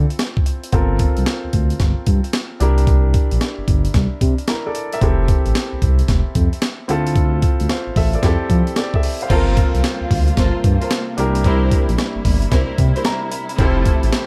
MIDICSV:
0, 0, Header, 1, 6, 480
1, 0, Start_track
1, 0, Tempo, 535714
1, 655, Time_signature, 4, 2, 24, 8
1, 12781, End_track
2, 0, Start_track
2, 0, Title_t, "Grand piano"
2, 0, Program_c, 0, 0
2, 0, Control_c, 0, 64, 127
2, 0, Note_on_c, 0, 60, 77
2, 0, Note_on_c, 0, 64, 67
2, 0, Note_on_c, 0, 65, 67
2, 0, Note_on_c, 0, 69, 76
2, 379, Note_off_c, 0, 60, 0
2, 382, Note_off_c, 0, 64, 0
2, 385, Note_off_c, 0, 65, 0
2, 389, Note_off_c, 0, 69, 0
2, 650, Note_on_c, 0, 60, 68
2, 656, Note_on_c, 0, 65, 65
2, 663, Note_on_c, 0, 69, 62
2, 665, Control_c, 0, 64, 0
2, 672, Note_on_c, 0, 70, 73
2, 832, Control_c, 0, 64, 127
2, 2299, Note_off_c, 0, 60, 0
2, 2302, Note_off_c, 0, 65, 0
2, 2305, Note_off_c, 0, 69, 0
2, 2310, Note_off_c, 0, 70, 0
2, 2330, Note_on_c, 0, 62, 75
2, 2338, Note_on_c, 0, 64, 66
2, 2345, Control_c, 0, 64, 0
2, 2345, Note_on_c, 0, 67, 68
2, 2352, Note_on_c, 0, 70, 78
2, 2525, Control_c, 0, 64, 127
2, 3983, Note_off_c, 0, 64, 0
2, 3986, Note_off_c, 0, 67, 0
2, 3990, Note_off_c, 0, 70, 0
2, 4025, Note_on_c, 0, 70, 63
2, 4031, Note_on_c, 0, 64, 58
2, 4169, Note_off_c, 0, 70, 0
2, 4172, Note_off_c, 0, 64, 0
2, 4179, Note_on_c, 0, 74, 66
2, 4183, Note_on_c, 0, 69, 57
2, 4216, Note_off_c, 0, 62, 0
2, 4403, Note_off_c, 0, 74, 0
2, 4405, Note_off_c, 0, 69, 0
2, 4422, Note_on_c, 0, 76, 68
2, 4427, Note_on_c, 0, 70, 57
2, 4491, Note_on_c, 0, 60, 68
2, 4500, Note_on_c, 0, 64, 67
2, 4504, Note_on_c, 0, 67, 70
2, 4505, Control_c, 0, 64, 0
2, 4512, Note_on_c, 0, 69, 75
2, 4645, Note_off_c, 0, 76, 0
2, 4647, Note_off_c, 0, 70, 0
2, 4665, Control_c, 0, 64, 127
2, 6139, Note_off_c, 0, 60, 0
2, 6144, Note_off_c, 0, 64, 0
2, 6146, Note_off_c, 0, 67, 0
2, 6150, Note_off_c, 0, 69, 0
2, 6165, Note_on_c, 0, 60, 68
2, 6173, Note_on_c, 0, 64, 69
2, 6181, Note_on_c, 0, 65, 70
2, 6184, Control_c, 0, 64, 0
2, 6188, Note_on_c, 0, 69, 83
2, 6344, Control_c, 0, 64, 127
2, 6652, Note_off_c, 0, 69, 0
2, 6900, Note_on_c, 0, 77, 64
2, 6904, Note_on_c, 0, 72, 52
2, 7126, Note_off_c, 0, 77, 0
2, 7128, Note_off_c, 0, 72, 0
2, 7141, Note_on_c, 0, 76, 71
2, 7148, Note_on_c, 0, 69, 62
2, 7287, Note_off_c, 0, 76, 0
2, 7290, Note_off_c, 0, 69, 0
2, 7298, Note_on_c, 0, 74, 62
2, 7305, Note_on_c, 0, 69, 55
2, 7346, Note_off_c, 0, 60, 0
2, 7350, Note_off_c, 0, 64, 0
2, 7354, Note_off_c, 0, 65, 0
2, 7374, Note_on_c, 0, 60, 67
2, 7381, Note_off_c, 0, 69, 0
2, 7381, Note_on_c, 0, 64, 70
2, 7385, Control_c, 0, 64, 0
2, 7387, Note_on_c, 0, 67, 68
2, 7395, Note_on_c, 0, 69, 83
2, 7523, Note_off_c, 0, 74, 0
2, 7524, Control_c, 0, 64, 127
2, 7855, Note_off_c, 0, 69, 0
2, 7864, Note_on_c, 0, 74, 61
2, 7870, Note_on_c, 0, 69, 54
2, 8009, Note_off_c, 0, 74, 0
2, 8011, Note_off_c, 0, 69, 0
2, 8021, Note_on_c, 0, 76, 63
2, 8025, Note_on_c, 0, 69, 54
2, 8244, Note_off_c, 0, 76, 0
2, 8247, Note_off_c, 0, 69, 0
2, 8262, Note_on_c, 0, 77, 62
2, 8267, Note_on_c, 0, 72, 55
2, 8315, Note_off_c, 0, 60, 0
2, 8319, Note_off_c, 0, 64, 0
2, 8322, Note_off_c, 0, 67, 0
2, 8334, Note_on_c, 0, 60, 70
2, 8340, Note_on_c, 0, 65, 63
2, 8346, Control_c, 0, 64, 0
2, 8347, Note_on_c, 0, 69, 59
2, 8355, Note_on_c, 0, 70, 80
2, 8485, Note_off_c, 0, 77, 0
2, 8487, Note_off_c, 0, 72, 0
2, 8500, Control_c, 0, 64, 127
2, 9981, Note_off_c, 0, 60, 0
2, 9984, Note_off_c, 0, 65, 0
2, 9988, Note_off_c, 0, 69, 0
2, 9991, Note_off_c, 0, 70, 0
2, 10008, Note_on_c, 0, 62, 75
2, 10015, Note_on_c, 0, 64, 62
2, 10023, Note_on_c, 0, 67, 69
2, 10028, Control_c, 0, 64, 0
2, 10028, Note_on_c, 0, 70, 79
2, 10208, Control_c, 0, 64, 127
2, 11699, Note_on_c, 0, 82, 72
2, 11895, Note_off_c, 0, 62, 0
2, 11899, Note_off_c, 0, 64, 0
2, 11903, Note_off_c, 0, 67, 0
2, 11906, Note_off_c, 0, 70, 0
2, 12143, Note_off_c, 0, 82, 0
2, 12172, Note_on_c, 0, 60, 76
2, 12180, Note_on_c, 0, 64, 65
2, 12186, Control_c, 0, 64, 0
2, 12186, Note_on_c, 0, 67, 61
2, 12192, Note_on_c, 0, 69, 82
2, 12321, Control_c, 0, 64, 127
2, 12781, Note_off_c, 0, 60, 0
2, 12781, Note_off_c, 0, 64, 0
2, 12781, Note_off_c, 0, 67, 0
2, 12781, Note_off_c, 0, 69, 0
2, 12781, End_track
3, 0, Start_track
3, 0, Title_t, "String section"
3, 0, Program_c, 1, 48
3, 8326, Note_on_c, 1, 65, 97
3, 8327, Note_on_c, 1, 69, 92
3, 8329, Note_on_c, 1, 70, 88
3, 8330, Note_on_c, 1, 72, 99
3, 8557, Note_off_c, 1, 65, 0
3, 8557, Note_off_c, 1, 69, 0
3, 8559, Note_off_c, 1, 70, 0
3, 8559, Note_off_c, 1, 72, 0
3, 9291, Note_on_c, 1, 65, 74
3, 9293, Note_on_c, 1, 69, 69
3, 9295, Note_on_c, 1, 70, 73
3, 9297, Note_on_c, 1, 72, 85
3, 9446, Note_off_c, 1, 65, 0
3, 9448, Note_off_c, 1, 69, 0
3, 9448, Note_off_c, 1, 70, 0
3, 9450, Note_off_c, 1, 72, 0
3, 9686, Note_on_c, 1, 65, 76
3, 9688, Note_on_c, 1, 69, 66
3, 9691, Note_on_c, 1, 70, 66
3, 9691, Note_on_c, 1, 72, 83
3, 9770, Note_off_c, 1, 65, 0
3, 9772, Note_off_c, 1, 69, 0
3, 9773, Note_off_c, 1, 70, 0
3, 9773, Note_off_c, 1, 72, 0
3, 10251, Note_on_c, 1, 64, 96
3, 10252, Note_on_c, 1, 67, 91
3, 10253, Note_on_c, 1, 70, 90
3, 10255, Note_on_c, 1, 72, 101
3, 10479, Note_off_c, 1, 64, 0
3, 10480, Note_off_c, 1, 67, 0
3, 10481, Note_off_c, 1, 70, 0
3, 10482, Note_off_c, 1, 72, 0
3, 11211, Note_on_c, 1, 64, 80
3, 11213, Note_on_c, 1, 67, 66
3, 11215, Note_on_c, 1, 70, 75
3, 11217, Note_on_c, 1, 72, 87
3, 11366, Note_off_c, 1, 64, 0
3, 11367, Note_off_c, 1, 67, 0
3, 11369, Note_off_c, 1, 70, 0
3, 11370, Note_off_c, 1, 72, 0
3, 11606, Note_on_c, 1, 64, 72
3, 11609, Note_on_c, 1, 67, 64
3, 11609, Note_on_c, 1, 70, 71
3, 11612, Note_on_c, 1, 72, 88
3, 11690, Note_off_c, 1, 64, 0
3, 11692, Note_off_c, 1, 67, 0
3, 11692, Note_off_c, 1, 70, 0
3, 11693, Note_off_c, 1, 72, 0
3, 12170, Note_on_c, 1, 64, 102
3, 12172, Note_on_c, 1, 65, 88
3, 12174, Note_on_c, 1, 69, 88
3, 12176, Note_on_c, 1, 72, 105
3, 12399, Note_off_c, 1, 64, 0
3, 12400, Note_off_c, 1, 65, 0
3, 12401, Note_off_c, 1, 69, 0
3, 12402, Note_off_c, 1, 72, 0
3, 12781, End_track
4, 0, Start_track
4, 0, Title_t, "String section"
4, 0, Program_c, 2, 48
4, 8331, Note_on_c, 2, 48, 75
4, 8331, Note_on_c, 2, 58, 70
4, 8334, Note_on_c, 2, 55, 66
4, 8335, Note_on_c, 2, 65, 83
4, 9997, Note_off_c, 2, 55, 0
4, 9998, Note_off_c, 2, 65, 0
4, 10018, Note_on_c, 2, 64, 77
4, 10020, Note_on_c, 2, 55, 66
4, 12137, Note_off_c, 2, 58, 0
4, 12156, Note_off_c, 2, 55, 0
4, 12170, Note_on_c, 2, 53, 70
4, 12170, Note_on_c, 2, 57, 72
4, 12781, Note_off_c, 2, 48, 0
4, 12781, Note_off_c, 2, 53, 0
4, 12781, Note_off_c, 2, 57, 0
4, 12781, Note_off_c, 2, 64, 0
4, 12781, End_track
5, 0, Start_track
5, 0, Title_t, "Analog synth bass"
5, 0, Program_c, 3, 38
5, 652, Note_on_c, 3, 31, 102
5, 951, Note_off_c, 3, 31, 0
5, 1053, Note_on_c, 3, 36, 81
5, 1115, Note_off_c, 3, 36, 0
5, 1293, Note_on_c, 3, 38, 46
5, 1326, Note_off_c, 3, 38, 0
5, 1375, Note_on_c, 3, 38, 80
5, 1555, Note_off_c, 3, 38, 0
5, 1614, Note_on_c, 3, 31, 102
5, 1732, Note_off_c, 3, 31, 0
5, 1854, Note_on_c, 3, 43, 91
5, 1972, Note_off_c, 3, 43, 0
5, 2336, Note_on_c, 3, 36, 94
5, 2814, Note_off_c, 3, 36, 0
5, 2972, Note_on_c, 3, 34, 89
5, 3034, Note_off_c, 3, 34, 0
5, 3210, Note_on_c, 3, 31, 50
5, 3244, Note_off_c, 3, 31, 0
5, 3296, Note_on_c, 3, 31, 99
5, 3476, Note_off_c, 3, 31, 0
5, 3534, Note_on_c, 3, 36, 106
5, 3652, Note_off_c, 3, 36, 0
5, 3776, Note_on_c, 3, 48, 104
5, 3893, Note_off_c, 3, 48, 0
5, 4494, Note_on_c, 3, 29, 102
5, 4792, Note_off_c, 3, 29, 0
5, 4892, Note_on_c, 3, 33, 80
5, 4954, Note_off_c, 3, 33, 0
5, 5134, Note_on_c, 3, 36, 48
5, 5166, Note_off_c, 3, 36, 0
5, 5215, Note_on_c, 3, 36, 93
5, 5395, Note_off_c, 3, 36, 0
5, 5452, Note_on_c, 3, 29, 100
5, 5571, Note_off_c, 3, 29, 0
5, 5693, Note_on_c, 3, 41, 102
5, 5811, Note_off_c, 3, 41, 0
5, 6176, Note_on_c, 3, 38, 98
5, 6654, Note_off_c, 3, 38, 0
5, 6814, Note_on_c, 3, 38, 84
5, 6875, Note_off_c, 3, 38, 0
5, 7053, Note_on_c, 3, 33, 50
5, 7086, Note_off_c, 3, 33, 0
5, 7133, Note_on_c, 3, 33, 101
5, 7314, Note_off_c, 3, 33, 0
5, 7373, Note_on_c, 3, 41, 90
5, 7491, Note_off_c, 3, 41, 0
5, 7614, Note_on_c, 3, 53, 97
5, 7732, Note_off_c, 3, 53, 0
5, 8334, Note_on_c, 3, 31, 104
5, 8632, Note_off_c, 3, 31, 0
5, 8732, Note_on_c, 3, 36, 90
5, 8794, Note_off_c, 3, 36, 0
5, 8970, Note_on_c, 3, 38, 49
5, 9004, Note_off_c, 3, 38, 0
5, 9057, Note_on_c, 3, 38, 84
5, 9236, Note_off_c, 3, 38, 0
5, 9294, Note_on_c, 3, 31, 109
5, 9412, Note_off_c, 3, 31, 0
5, 9536, Note_on_c, 3, 43, 105
5, 9654, Note_off_c, 3, 43, 0
5, 10017, Note_on_c, 3, 36, 96
5, 10494, Note_off_c, 3, 36, 0
5, 10653, Note_on_c, 3, 34, 98
5, 10715, Note_off_c, 3, 34, 0
5, 10893, Note_on_c, 3, 31, 47
5, 10926, Note_off_c, 3, 31, 0
5, 10976, Note_on_c, 3, 31, 102
5, 11156, Note_off_c, 3, 31, 0
5, 11215, Note_on_c, 3, 36, 104
5, 11333, Note_off_c, 3, 36, 0
5, 11455, Note_on_c, 3, 48, 101
5, 11572, Note_off_c, 3, 48, 0
5, 12174, Note_on_c, 3, 29, 109
5, 12473, Note_off_c, 3, 29, 0
5, 12573, Note_on_c, 3, 33, 83
5, 12635, Note_off_c, 3, 33, 0
5, 12781, End_track
6, 0, Start_track
6, 0, Title_t, "Drums"
6, 92, Note_on_c, 9, 42, 47
6, 171, Note_off_c, 9, 42, 0
6, 171, Note_on_c, 9, 42, 77
6, 172, Note_on_c, 9, 38, 117
6, 260, Note_off_c, 9, 42, 0
6, 262, Note_off_c, 9, 38, 0
6, 330, Note_on_c, 9, 36, 96
6, 413, Note_on_c, 9, 42, 80
6, 420, Note_off_c, 9, 36, 0
6, 503, Note_off_c, 9, 42, 0
6, 569, Note_on_c, 9, 42, 56
6, 649, Note_off_c, 9, 42, 0
6, 649, Note_on_c, 9, 42, 59
6, 651, Note_on_c, 9, 36, 112
6, 738, Note_off_c, 9, 42, 0
6, 741, Note_off_c, 9, 36, 0
6, 889, Note_on_c, 9, 42, 73
6, 893, Note_on_c, 9, 36, 95
6, 978, Note_off_c, 9, 42, 0
6, 983, Note_off_c, 9, 36, 0
6, 1045, Note_on_c, 9, 42, 50
6, 1132, Note_off_c, 9, 42, 0
6, 1132, Note_on_c, 9, 38, 105
6, 1132, Note_on_c, 9, 42, 64
6, 1222, Note_off_c, 9, 38, 0
6, 1222, Note_off_c, 9, 42, 0
6, 1371, Note_on_c, 9, 42, 73
6, 1374, Note_on_c, 9, 36, 93
6, 1461, Note_off_c, 9, 42, 0
6, 1464, Note_off_c, 9, 36, 0
6, 1526, Note_on_c, 9, 42, 49
6, 1610, Note_on_c, 9, 38, 68
6, 1612, Note_off_c, 9, 42, 0
6, 1612, Note_on_c, 9, 36, 81
6, 1612, Note_on_c, 9, 42, 66
6, 1700, Note_off_c, 9, 38, 0
6, 1701, Note_off_c, 9, 36, 0
6, 1702, Note_off_c, 9, 42, 0
6, 1850, Note_on_c, 9, 42, 74
6, 1853, Note_on_c, 9, 36, 97
6, 1940, Note_off_c, 9, 42, 0
6, 1943, Note_off_c, 9, 36, 0
6, 2009, Note_on_c, 9, 42, 47
6, 2090, Note_off_c, 9, 42, 0
6, 2090, Note_on_c, 9, 42, 73
6, 2091, Note_on_c, 9, 38, 121
6, 2179, Note_off_c, 9, 42, 0
6, 2181, Note_off_c, 9, 38, 0
6, 2334, Note_on_c, 9, 42, 78
6, 2423, Note_off_c, 9, 42, 0
6, 2489, Note_on_c, 9, 42, 56
6, 2573, Note_off_c, 9, 42, 0
6, 2573, Note_on_c, 9, 36, 109
6, 2573, Note_on_c, 9, 42, 62
6, 2662, Note_off_c, 9, 36, 0
6, 2663, Note_off_c, 9, 42, 0
6, 2813, Note_on_c, 9, 42, 76
6, 2815, Note_on_c, 9, 36, 104
6, 2902, Note_off_c, 9, 42, 0
6, 2904, Note_off_c, 9, 36, 0
6, 2969, Note_on_c, 9, 42, 54
6, 3055, Note_off_c, 9, 42, 0
6, 3055, Note_on_c, 9, 38, 96
6, 3055, Note_on_c, 9, 42, 67
6, 3145, Note_off_c, 9, 38, 0
6, 3145, Note_off_c, 9, 42, 0
6, 3295, Note_on_c, 9, 36, 92
6, 3296, Note_on_c, 9, 42, 73
6, 3384, Note_off_c, 9, 36, 0
6, 3386, Note_off_c, 9, 42, 0
6, 3447, Note_on_c, 9, 42, 54
6, 3532, Note_on_c, 9, 38, 69
6, 3533, Note_on_c, 9, 36, 84
6, 3534, Note_off_c, 9, 42, 0
6, 3534, Note_on_c, 9, 42, 68
6, 3621, Note_off_c, 9, 38, 0
6, 3623, Note_off_c, 9, 36, 0
6, 3623, Note_off_c, 9, 42, 0
6, 3774, Note_on_c, 9, 36, 89
6, 3775, Note_on_c, 9, 42, 76
6, 3863, Note_off_c, 9, 36, 0
6, 3864, Note_off_c, 9, 42, 0
6, 3928, Note_on_c, 9, 42, 43
6, 4010, Note_off_c, 9, 42, 0
6, 4010, Note_on_c, 9, 42, 76
6, 4012, Note_on_c, 9, 38, 115
6, 4100, Note_off_c, 9, 42, 0
6, 4102, Note_off_c, 9, 38, 0
6, 4254, Note_on_c, 9, 42, 84
6, 4344, Note_off_c, 9, 42, 0
6, 4413, Note_on_c, 9, 42, 56
6, 4493, Note_on_c, 9, 36, 110
6, 4495, Note_off_c, 9, 42, 0
6, 4495, Note_on_c, 9, 42, 57
6, 4583, Note_off_c, 9, 36, 0
6, 4584, Note_off_c, 9, 42, 0
6, 4734, Note_on_c, 9, 42, 73
6, 4735, Note_on_c, 9, 36, 99
6, 4824, Note_off_c, 9, 36, 0
6, 4824, Note_off_c, 9, 42, 0
6, 4889, Note_on_c, 9, 42, 47
6, 4975, Note_off_c, 9, 42, 0
6, 4975, Note_on_c, 9, 38, 98
6, 4975, Note_on_c, 9, 42, 71
6, 5064, Note_off_c, 9, 42, 0
6, 5065, Note_off_c, 9, 38, 0
6, 5214, Note_on_c, 9, 36, 92
6, 5214, Note_on_c, 9, 42, 69
6, 5304, Note_off_c, 9, 36, 0
6, 5304, Note_off_c, 9, 42, 0
6, 5365, Note_on_c, 9, 42, 50
6, 5451, Note_on_c, 9, 38, 68
6, 5452, Note_on_c, 9, 36, 85
6, 5453, Note_off_c, 9, 42, 0
6, 5453, Note_on_c, 9, 42, 65
6, 5541, Note_off_c, 9, 38, 0
6, 5542, Note_off_c, 9, 36, 0
6, 5543, Note_off_c, 9, 42, 0
6, 5691, Note_on_c, 9, 42, 76
6, 5692, Note_on_c, 9, 36, 96
6, 5781, Note_off_c, 9, 42, 0
6, 5782, Note_off_c, 9, 36, 0
6, 5850, Note_on_c, 9, 42, 46
6, 5929, Note_off_c, 9, 42, 0
6, 5929, Note_on_c, 9, 42, 76
6, 5931, Note_on_c, 9, 38, 120
6, 6019, Note_off_c, 9, 42, 0
6, 6020, Note_off_c, 9, 38, 0
6, 6173, Note_on_c, 9, 42, 79
6, 6262, Note_off_c, 9, 42, 0
6, 6331, Note_on_c, 9, 42, 53
6, 6412, Note_on_c, 9, 36, 114
6, 6413, Note_off_c, 9, 42, 0
6, 6413, Note_on_c, 9, 42, 57
6, 6501, Note_off_c, 9, 36, 0
6, 6502, Note_off_c, 9, 42, 0
6, 6651, Note_on_c, 9, 42, 78
6, 6653, Note_on_c, 9, 36, 99
6, 6741, Note_off_c, 9, 42, 0
6, 6743, Note_off_c, 9, 36, 0
6, 6808, Note_on_c, 9, 42, 52
6, 6894, Note_off_c, 9, 42, 0
6, 6894, Note_on_c, 9, 38, 94
6, 6894, Note_on_c, 9, 42, 66
6, 6984, Note_off_c, 9, 38, 0
6, 6984, Note_off_c, 9, 42, 0
6, 7134, Note_on_c, 9, 36, 90
6, 7134, Note_on_c, 9, 46, 68
6, 7223, Note_off_c, 9, 36, 0
6, 7224, Note_off_c, 9, 46, 0
6, 7288, Note_on_c, 9, 42, 48
6, 7372, Note_on_c, 9, 36, 80
6, 7373, Note_on_c, 9, 38, 72
6, 7375, Note_off_c, 9, 42, 0
6, 7375, Note_on_c, 9, 42, 69
6, 7462, Note_off_c, 9, 36, 0
6, 7463, Note_off_c, 9, 38, 0
6, 7465, Note_off_c, 9, 42, 0
6, 7613, Note_on_c, 9, 36, 89
6, 7613, Note_on_c, 9, 42, 78
6, 7703, Note_off_c, 9, 36, 0
6, 7703, Note_off_c, 9, 42, 0
6, 7769, Note_on_c, 9, 42, 46
6, 7850, Note_off_c, 9, 42, 0
6, 7850, Note_on_c, 9, 42, 77
6, 7852, Note_on_c, 9, 38, 116
6, 7940, Note_off_c, 9, 42, 0
6, 7941, Note_off_c, 9, 38, 0
6, 8009, Note_on_c, 9, 36, 97
6, 8092, Note_on_c, 9, 46, 78
6, 8098, Note_off_c, 9, 36, 0
6, 8182, Note_off_c, 9, 46, 0
6, 8251, Note_on_c, 9, 42, 56
6, 8333, Note_on_c, 9, 36, 120
6, 8334, Note_off_c, 9, 42, 0
6, 8334, Note_on_c, 9, 42, 59
6, 8334, Note_on_c, 9, 49, 89
6, 8422, Note_off_c, 9, 36, 0
6, 8423, Note_off_c, 9, 42, 0
6, 8423, Note_off_c, 9, 49, 0
6, 8574, Note_on_c, 9, 42, 81
6, 8575, Note_on_c, 9, 36, 101
6, 8664, Note_off_c, 9, 36, 0
6, 8664, Note_off_c, 9, 42, 0
6, 8733, Note_on_c, 9, 42, 50
6, 8816, Note_off_c, 9, 42, 0
6, 8816, Note_on_c, 9, 38, 93
6, 8816, Note_on_c, 9, 42, 68
6, 8905, Note_off_c, 9, 42, 0
6, 8906, Note_off_c, 9, 38, 0
6, 9056, Note_on_c, 9, 36, 84
6, 9057, Note_on_c, 9, 46, 77
6, 9145, Note_off_c, 9, 36, 0
6, 9147, Note_off_c, 9, 46, 0
6, 9208, Note_on_c, 9, 42, 49
6, 9293, Note_on_c, 9, 38, 74
6, 9294, Note_on_c, 9, 36, 83
6, 9295, Note_off_c, 9, 42, 0
6, 9295, Note_on_c, 9, 42, 66
6, 9383, Note_off_c, 9, 38, 0
6, 9384, Note_off_c, 9, 36, 0
6, 9385, Note_off_c, 9, 42, 0
6, 9534, Note_on_c, 9, 42, 74
6, 9535, Note_on_c, 9, 36, 89
6, 9623, Note_off_c, 9, 42, 0
6, 9624, Note_off_c, 9, 36, 0
6, 9691, Note_on_c, 9, 42, 46
6, 9772, Note_off_c, 9, 42, 0
6, 9772, Note_on_c, 9, 42, 82
6, 9773, Note_on_c, 9, 38, 113
6, 9861, Note_off_c, 9, 42, 0
6, 9863, Note_off_c, 9, 38, 0
6, 10015, Note_on_c, 9, 42, 78
6, 10105, Note_off_c, 9, 42, 0
6, 10171, Note_on_c, 9, 42, 56
6, 10254, Note_on_c, 9, 36, 116
6, 10255, Note_off_c, 9, 42, 0
6, 10255, Note_on_c, 9, 42, 59
6, 10344, Note_off_c, 9, 36, 0
6, 10344, Note_off_c, 9, 42, 0
6, 10496, Note_on_c, 9, 36, 99
6, 10496, Note_on_c, 9, 42, 81
6, 10586, Note_off_c, 9, 36, 0
6, 10586, Note_off_c, 9, 42, 0
6, 10653, Note_on_c, 9, 42, 50
6, 10738, Note_off_c, 9, 42, 0
6, 10738, Note_on_c, 9, 38, 99
6, 10738, Note_on_c, 9, 42, 65
6, 10827, Note_off_c, 9, 42, 0
6, 10828, Note_off_c, 9, 38, 0
6, 10976, Note_on_c, 9, 36, 90
6, 10976, Note_on_c, 9, 46, 76
6, 11065, Note_off_c, 9, 36, 0
6, 11066, Note_off_c, 9, 46, 0
6, 11129, Note_on_c, 9, 42, 52
6, 11214, Note_on_c, 9, 36, 86
6, 11215, Note_on_c, 9, 38, 74
6, 11217, Note_off_c, 9, 42, 0
6, 11217, Note_on_c, 9, 42, 72
6, 11304, Note_off_c, 9, 36, 0
6, 11305, Note_off_c, 9, 38, 0
6, 11307, Note_off_c, 9, 42, 0
6, 11454, Note_on_c, 9, 42, 75
6, 11455, Note_on_c, 9, 36, 95
6, 11543, Note_off_c, 9, 42, 0
6, 11544, Note_off_c, 9, 36, 0
6, 11612, Note_on_c, 9, 42, 46
6, 11690, Note_off_c, 9, 42, 0
6, 11690, Note_on_c, 9, 42, 76
6, 11691, Note_on_c, 9, 38, 121
6, 11779, Note_off_c, 9, 42, 0
6, 11781, Note_off_c, 9, 38, 0
6, 11931, Note_on_c, 9, 42, 88
6, 12021, Note_off_c, 9, 42, 0
6, 12090, Note_on_c, 9, 42, 56
6, 12172, Note_off_c, 9, 42, 0
6, 12172, Note_on_c, 9, 42, 55
6, 12173, Note_on_c, 9, 36, 117
6, 12262, Note_off_c, 9, 36, 0
6, 12262, Note_off_c, 9, 42, 0
6, 12414, Note_on_c, 9, 42, 82
6, 12415, Note_on_c, 9, 36, 101
6, 12504, Note_off_c, 9, 42, 0
6, 12505, Note_off_c, 9, 36, 0
6, 12573, Note_on_c, 9, 42, 53
6, 12657, Note_off_c, 9, 42, 0
6, 12657, Note_on_c, 9, 38, 99
6, 12657, Note_on_c, 9, 42, 72
6, 12746, Note_off_c, 9, 38, 0
6, 12746, Note_off_c, 9, 42, 0
6, 12781, End_track
0, 0, End_of_file